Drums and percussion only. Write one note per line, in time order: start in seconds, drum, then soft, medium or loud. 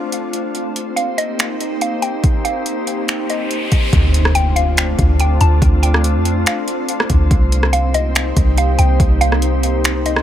0.12 closed hi-hat medium
0.33 closed hi-hat medium
0.55 closed hi-hat medium
0.76 closed hi-hat medium
0.97 closed hi-hat medium
1.18 closed hi-hat medium
1.39 finger snap loud
1.39 closed hi-hat medium
1.60 closed hi-hat medium
1.81 closed hi-hat medium
2.02 closed hi-hat medium
2.24 kick loud
2.24 closed hi-hat medium
2.45 closed hi-hat medium
2.66 closed hi-hat medium
2.87 closed hi-hat medium
3.08 finger snap loud
3.08 closed hi-hat medium
3.30 closed hi-hat medium
3.51 closed hi-hat medium
3.72 kick medium
3.72 closed hi-hat medium
3.93 kick loud
3.93 closed hi-hat medium
4.14 closed hi-hat medium
4.25 cross-stick loud
4.35 closed hi-hat medium
4.56 closed hi-hat medium
4.77 finger snap loud
4.77 closed hi-hat medium
4.99 kick loud
4.99 closed hi-hat medium
5.20 closed hi-hat medium
5.41 closed hi-hat medium
5.62 kick loud
5.62 closed hi-hat medium
5.83 closed hi-hat medium
5.94 cross-stick loud
6.04 closed hi-hat medium
6.25 closed hi-hat medium
6.46 finger snap loud
6.46 closed hi-hat medium
6.68 closed hi-hat medium
6.89 closed hi-hat medium
7.00 cross-stick loud
7.10 kick medium
7.10 closed hi-hat medium
7.31 kick loud
7.31 closed hi-hat medium
7.52 closed hi-hat medium
7.63 cross-stick medium
7.73 closed hi-hat medium
7.94 closed hi-hat medium
8.15 finger snap loud
8.15 closed hi-hat medium
8.37 kick medium
8.37 closed hi-hat medium
8.58 closed hi-hat medium
8.79 closed hi-hat medium
9.00 kick loud
9.00 closed hi-hat medium
9.21 closed hi-hat medium
9.32 cross-stick medium
9.42 closed hi-hat medium
9.63 closed hi-hat medium
9.84 finger snap loud
9.84 closed hi-hat medium
10.06 closed hi-hat medium
10.16 cross-stick medium